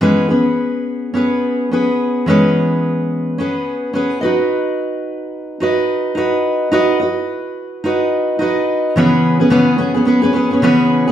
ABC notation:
X:1
M:4/4
L:1/16
Q:"Swing 16ths" 1/4=108
K:E
V:1 name="Steel-string acoustic guitar"
[E,G,B,CGB]2 [B,CGB]6 [B,CGB]4 [B,CGB]4 | [E,G,B,CGB]8 [B,CGB]4 [B,CGB]2 [DFBd]2- | [DFBd]8 [DFBd]4 [DFBd]4 | [DFBd]2 [FBd]6 [DFBd]4 [DFBd]4 |
[C,E,B,CGB]3 [B,CGB] [C,E,B,CGB]2 [B,CGB] [B,CGB] [B,CGB] [B,CGB] [B,CGB] [B,CGB] [C,E,B,CGB]3 [GB] |]